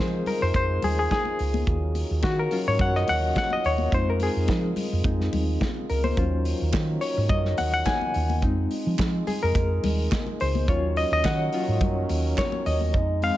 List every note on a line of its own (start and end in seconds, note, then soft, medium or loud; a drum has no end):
0.00 0.21 F3 medium
0.00 1.65 G#3 medium
0.00 1.70 G#3 medium
0.00 1.69 C4 medium
0.00 1.65 D#4 medium
0.00 1.69 D#4 medium
0.00 10.64 F4 medium
0.00 0.84 G#4 medium
0.00 0.28 A#4 medium
0.00 0.28 C5 medium
0.26 0.42 A#4 medium
0.26 open hi-hat medium
0.26 low conga medium
0.42 0.53 F2 loud
0.42 0.55 C5 medium
0.54 0.68 C5 medium
0.54 kick loud
0.54 closed hi-hat medium
0.54 muted conga medium
0.82 1.05 D#2 medium
0.82 0.98 G#4 medium
0.82 open hi-hat medium
0.82 muted conga soft
0.82 low conga medium
0.99 1.05 G#4 medium
1.11 1.92 G#4 medium
1.11 kick loud
1.11 snare loud
1.11 closed hi-hat medium
1.11 high conga medium
1.25 high conga medium
1.39 1.62 C#2 medium
1.39 open hi-hat medium
1.54 high conga medium
1.67 2.02 D#2 medium
1.67 3.90 D#3 medium
1.67 3.90 F#3 medium
1.67 3.90 A#3 medium
1.67 3.90 C#4 medium
1.67 kick loud
1.67 closed hi-hat medium
1.95 open hi-hat medium
1.95 muted conga soft
2.11 2.21 D#2 medium
2.23 2.46 D#3 medium
2.23 2.39 F#4 loud
2.23 kick loud
2.23 snare loud
2.23 closed hi-hat medium
2.23 high conga medium
2.39 2.52 A#4 medium
2.51 2.90 F#3 medium
2.51 2.90 C#4 medium
2.51 2.90 F4 medium
2.51 open hi-hat medium
2.67 2.78 G#2 medium
2.67 2.81 C#5 loud
2.79 3.02 F#2 medium
2.79 2.96 F#5 loud
2.79 kick loud
2.79 closed hi-hat medium
2.79 muted conga medium
2.79 low conga medium
2.95 3.09 D#5 medium
2.95 snare soft
3.08 3.31 D#2 medium
3.08 3.37 F#5 loud
3.08 open hi-hat medium
3.08 muted conga medium
3.35 3.44 F#5 loud
3.35 kick medium
3.35 snare loud
3.35 closed hi-hat medium
3.35 high conga medium
3.50 3.65 D#5 medium
3.50 high conga medium
3.64 3.87 D#2 medium
3.64 3.78 C#5 loud
3.64 open hi-hat soft
3.78 high conga medium
3.92 4.27 F2 medium
3.92 6.15 G#3 medium
3.92 5.04 G#3 medium
3.92 5.04 C4 medium
3.92 6.15 D#4 medium
3.92 5.04 D#4 medium
3.92 4.09 C5 loud
3.92 kick loud
3.92 closed hi-hat medium
4.10 4.21 A#4 medium
4.20 5.02 G#4 medium
4.20 open hi-hat medium
4.20 muted conga soft
4.36 4.46 F2 medium
4.48 4.71 F3 medium
4.48 kick loud
4.48 snare loud
4.48 closed hi-hat medium
4.48 high conga medium
4.76 open hi-hat medium
4.76 low conga medium
4.93 5.03 F2 medium
5.04 5.30 G#3 soft
5.04 5.30 C4 soft
5.04 5.30 D#4 medium
5.04 kick loud
5.04 closed hi-hat medium
5.04 muted conga medium
5.20 snare soft
5.33 5.56 D#2 medium
5.33 open hi-hat medium
5.33 muted conga medium
5.33 low conga medium
5.61 kick medium
5.61 snare loud
5.61 closed hi-hat medium
5.61 high conga medium
5.89 6.12 C#2 medium
5.89 6.05 A#4 medium
5.89 open hi-hat medium
6.04 7.05 C5 medium
6.04 high conga medium
6.17 6.52 D#2 medium
6.17 8.41 D#3 medium
6.17 8.38 F#3 medium
6.17 8.41 F#3 medium
6.17 8.40 A#3 medium
6.17 8.39 C#4 medium
6.17 8.41 C#4 medium
6.17 8.39 F4 medium
6.17 kick loud
6.17 closed hi-hat medium
6.45 open hi-hat medium
6.61 6.72 D#2 medium
6.73 6.96 D#3 loud
6.73 kick loud
6.73 snare loud
6.73 clap loud
6.73 closed hi-hat medium
6.73 high conga medium
7.01 7.30 C#5 medium
7.01 open hi-hat medium
7.17 7.28 G#2 loud
7.29 7.52 F#2 loud
7.29 7.56 D#5 medium
7.29 kick loud
7.29 closed hi-hat medium
7.29 muted conga soft
7.29 low conga medium
7.45 snare soft
7.58 7.81 D#2 medium
7.58 7.72 F#5 loud
7.58 open hi-hat medium
7.58 muted conga medium
7.74 7.79 F#5 medium
7.86 8.38 G#5 loud
7.86 kick loud
7.86 snare loud
7.86 clap medium
7.86 closed hi-hat medium
7.86 high conga medium
8.01 high conga medium
8.14 8.43 D#2 medium
8.14 open hi-hat medium
8.30 high conga medium
8.42 8.65 F2 medium
8.42 8.81 G#3 medium
8.42 10.66 G#3 medium
8.42 8.81 C4 medium
8.42 10.66 D#4 medium
8.42 8.81 D#4 medium
8.42 kick loud
8.42 closed hi-hat medium
8.71 open hi-hat medium
8.87 8.97 F3 medium
8.98 9.22 F3 loud
8.98 kick loud
8.98 snare loud
8.98 clap medium
8.98 closed hi-hat medium
8.98 high conga medium
9.27 9.43 G#4 medium
9.27 open hi-hat medium
9.27 low conga medium
9.43 9.53 F2 medium
9.43 10.43 A#4 medium
9.55 9.78 F2 medium
9.55 kick loud
9.55 closed hi-hat medium
9.55 muted conga medium
9.83 10.06 D#2 medium
9.83 open hi-hat medium
9.83 muted conga medium
9.83 low conga medium
10.12 kick loud
10.12 snare loud
10.12 clap medium
10.12 closed hi-hat medium
10.12 high conga medium
10.27 high conga medium
10.40 10.68 C#2 medium
10.40 10.69 C5 medium
10.40 open hi-hat medium
10.55 high conga medium
10.68 11.03 D#2 medium
10.68 12.92 D#3 medium
10.68 12.92 F#3 medium
10.68 11.07 F#3 medium
10.68 12.92 A#3 medium
10.68 12.92 C#4 medium
10.68 11.07 C#4 medium
10.68 11.07 F4 medium
10.68 10.98 C#5 medium
10.68 kick loud
10.68 closed hi-hat medium
10.96 11.12 D#5 loud
10.96 open hi-hat medium
11.12 11.22 D#2 loud
11.12 11.26 D#5 loud
11.24 11.47 D#3 loud
11.24 11.78 F#5 loud
11.24 kick loud
11.24 snare loud
11.24 clap loud
11.24 closed hi-hat medium
11.24 high conga medium
11.53 11.79 F#3 soft
11.53 11.79 C#4 soft
11.53 11.79 F4 medium
11.53 open hi-hat medium
11.68 11.81 G#2 medium
11.81 12.04 F#2 medium
11.81 kick loud
11.81 closed hi-hat medium
11.81 muted conga medium
11.81 low conga medium
12.09 12.32 D#2 loud
12.09 open hi-hat medium
12.09 muted conga soft
12.38 12.51 C#5 medium
12.38 kick loud
12.38 snare loud
12.38 clap medium
12.38 closed hi-hat medium
12.38 high conga medium
12.52 high conga medium
12.66 12.95 D#2 loud
12.66 13.24 D#5 medium
12.66 open hi-hat medium
12.81 high conga medium
12.94 13.29 F2 medium
12.94 13.37 G#3 medium
12.94 13.37 D#4 medium
12.94 kick loud
12.94 closed hi-hat medium
13.22 13.37 G#3 medium
13.22 13.37 C4 medium
13.22 13.37 D#4 medium
13.22 13.37 F5 loud
13.22 open hi-hat medium